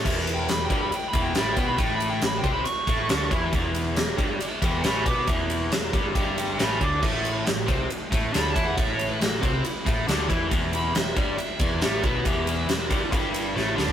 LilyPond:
<<
  \new Staff \with { instrumentName = "Lead electric guitar" } { \time 4/4 \key a \major \tempo 4 = 138 \tuplet 3/2 { r4 g''8 b''8 g''8 b''8 g''8 b''8 g''8 b''8 g''8 b''8 } | \tuplet 3/2 { g''8 b''8 g''8 b''8 g''8 b''8 } cis'''2 | r2 <gis' e''>8 <e'' g''>8 <gis'' b''>8 d'''8 | r2 <gis' e''>8 <e'' g''>8 <gis'' b''>8 d'''8 |
r2. \tuplet 3/2 { b''8 a''8 fis''8 } | \tuplet 3/2 { e''8 cis''8 b'8 a'8 fis'8 e'8 } e'8 r4. | r8 b''8 e''8 d''8 e''8 d''8 g'8 e'8 | g'8 e'8 e'2. | }
  \new Staff \with { instrumentName = "Distorted electric guitar" } { \clef bass \time 4/4 \key a \major <e, e>4 e,8 <g, g>8 r8 <e, e>8 <a, a>8 <b, b>8 | <a, a>4 a,8 <c c'>8 r8 <a, a>8 <d d'>8 <e e'>8 | <e, e>4 e,8 <g, g>8 r8 <e, e>8 <a, a>8 <b, b>8 | <e, e>4 e,8 <g, g>8 <g, g>4 <a, a>8 <d d'>8 |
<a, a>4 a,8 <c c'>8 r8 <a, a>8 <d d'>8 <e e'>8 | <a, a>4 a,8 <c c'>8 r8 <a, a>8 <d d'>8 <e e'>8 | <e, e>4 e,8 <g, g>8 r8 <e, e>8 <a, a>8 <b, b>8 | <e, e>4 e,8 <g, g>8 <g, g>4 <a, a>8 <d d'>8 | }
  \new Staff \with { instrumentName = "Picked electric bass" } { \clef bass \time 4/4 \key a \major e,,4 e,,8 g,,8 r8 e,,8 a,,8 b,,8 | a,,4 a,,8 c,8 r8 a,,8 d,8 e,8 | e,,4 e,,8 g,,8 r8 e,,8 a,,8 b,,8 | e,,4 e,,8 g,,8 g,,4 a,,8 d,8 |
a,,4 a,,8 c,8 r8 a,,8 d,8 e,8 | a,,4 a,,8 c,8 r8 a,,8 d,8 e,8 | e,,4 e,,8 g,,8 r8 e,,8 a,,8 b,,8 | e,,4 e,,8 g,,8 g,,4 a,,8 d,8 | }
  \new DrumStaff \with { instrumentName = "Drums" } \drummode { \time 4/4 <cymc bd>8 cymr8 <cymr sn>8 <bd cymr>8 cymr8 <bd cymr>8 <cymr sn>8 <bd cymr>8 | <bd cymr>8 cymr8 <cymr sn>8 <bd cymr>8 cymr8 <bd cymr>8 <cymr sn>8 <bd cymr>8 | <bd cymr>8 cymr8 <cymr sn>8 <bd cymr>8 cymr8 <bd cymr>8 <cymr sn>8 <bd cymr>8 | <bd cymr>8 cymr8 <cymr sn>8 <bd cymr>8 <bd cymr>8 cymr8 <cymr sn>8 <bd cymr>8 |
<cymc bd>8 cymr8 <cymr sn>8 <bd cymr>8 cymr8 <bd cymr>8 <cymr sn>8 <bd cymr>8 | <bd cymr>8 cymr8 <cymr sn>8 <bd cymr>8 cymr8 <bd cymr>8 <cymr sn>8 <bd cymr>8 | <bd cymr>8 cymr8 <cymr sn>8 <bd cymr>8 cymr8 <bd cymr>8 <cymr sn>8 <bd cymr>8 | <bd cymr>8 cymr8 <cymr sn>8 <bd cymr>8 <bd cymr>8 cymr8 sn8 sn16 tomfh16 | }
>>